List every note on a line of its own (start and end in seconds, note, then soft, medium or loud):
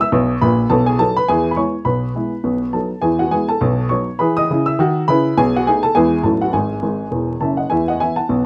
0.01 0.28 E5 medium
0.01 0.29 E6 medium
0.12 0.37 B1 loud
0.12 0.37 B2 medium
0.41 0.65 A#1 medium
0.41 0.65 A#2 medium
0.41 0.69 B4 medium
0.41 0.70 B5 medium
0.70 0.95 B1 medium
0.70 0.94 B2 medium
0.70 0.86 A4 medium
0.70 0.87 A5 medium
0.86 0.99 G#4 medium
0.86 0.99 G#5 medium
0.99 1.15 F#3 medium
0.99 1.15 B3 soft
0.99 1.16 D#4 medium
0.99 1.15 A4 medium
0.99 1.16 A5 loud
1.16 1.28 B4 medium
1.16 1.28 B5 medium
1.28 1.53 E2 medium
1.28 1.53 E3 medium
1.28 1.50 G#4 medium
1.28 1.51 G#5 medium
1.51 1.57 B5 medium
1.56 1.72 G#3 soft
1.56 1.73 B3 soft
1.56 1.73 E4 soft
1.56 1.84 C#5 medium
1.56 1.86 C#6 medium
1.85 2.10 B1 medium
1.85 2.11 B2 medium
1.85 2.70 B4 medium
1.85 2.73 B5 medium
2.15 2.31 G#3 soft
2.15 2.31 B3 soft
2.15 2.32 E4 soft
2.44 2.69 B1 medium
2.44 2.69 B2 medium
2.73 2.89 F#3 soft
2.73 2.90 B3 soft
2.73 2.90 D#4 soft
2.73 3.01 A4 soft
2.73 3.03 A5 medium
3.02 3.27 E2 medium
3.02 3.27 E3 medium
3.02 3.19 G#4 medium
3.02 3.19 G#5 medium
3.19 3.31 F#4 medium
3.19 3.32 F#5 medium
3.31 3.47 G#3 soft
3.31 3.48 B3 soft
3.31 3.48 E4 medium
3.31 3.48 G#4 medium
3.31 3.49 G#5 medium
3.49 3.88 A4 medium
3.49 3.90 A5 medium
3.61 3.86 B1 medium
3.61 3.86 B2 medium
3.89 4.06 F#3 soft
3.89 4.06 B3 soft
3.89 4.06 D#4 soft
3.89 4.18 C#5 medium
3.89 4.19 C#6 medium
4.19 4.43 E3 medium
4.19 4.43 G#4 medium
4.19 4.36 B4 medium
4.19 4.36 B5 medium
4.37 4.64 D#5 medium
4.37 4.66 D#6 loud
4.50 4.73 C#3 medium
4.50 4.74 E4 medium
4.66 4.94 E5 medium
4.66 4.95 E6 medium
4.79 5.02 D#3 loud
4.79 5.02 F#4 loud
5.08 5.31 C#3 medium
5.08 5.32 E4 medium
5.08 5.35 B4 medium
5.08 5.37 B5 loud
5.37 5.62 B1 medium
5.37 5.62 B2 medium
5.37 5.53 G#4 medium
5.37 5.54 G#5 loud
5.56 5.66 F#4 medium
5.56 5.67 F#5 medium
5.67 5.83 A3 medium
5.67 5.83 B3 medium
5.67 5.84 D#4 medium
5.67 5.83 G#4 medium
5.67 5.83 G#5 medium
5.83 5.95 A4 medium
5.83 5.95 A5 loud
5.95 6.20 E2 medium
5.95 6.20 E3 loud
5.95 6.11 G#3 medium
5.95 6.11 B3 medium
5.95 6.12 E4 medium
5.95 6.23 G#4 medium
5.95 6.24 G#5 loud
6.23 6.48 A1 medium
6.23 6.49 A2 medium
6.23 6.40 F#3 soft
6.23 6.40 B3 soft
6.23 6.41 D#4 soft
6.23 6.40 A4 medium
6.23 6.41 A5 medium
6.41 6.53 F#4 medium
6.41 6.53 F#5 medium
6.53 6.76 G#1 medium
6.53 6.77 G#2 medium
6.53 7.37 G#4 medium
6.53 7.41 G#5 medium
6.83 7.04 G#1 medium
6.83 7.04 G#2 medium
7.11 7.33 E1 medium
7.11 7.33 E2 medium
7.41 7.63 F#1 medium
7.41 7.63 F#2 medium
7.41 7.57 E5 medium
7.41 7.58 A5 medium
7.57 7.69 D#5 soft
7.57 7.69 F#5 medium
7.70 7.95 E2 medium
7.70 7.95 E3 medium
7.70 7.86 E5 medium
7.70 7.87 G#5 medium
7.88 7.99 D#5 medium
7.88 8.00 F#5 medium
8.00 8.16 E3 soft
8.00 8.16 B3 soft
8.00 8.17 E4 soft
8.00 8.16 E5 medium
8.00 8.17 G#5 medium
8.16 8.44 F#5 medium
8.16 8.45 A5 medium
8.29 8.46 B1 medium
8.29 8.46 B2 medium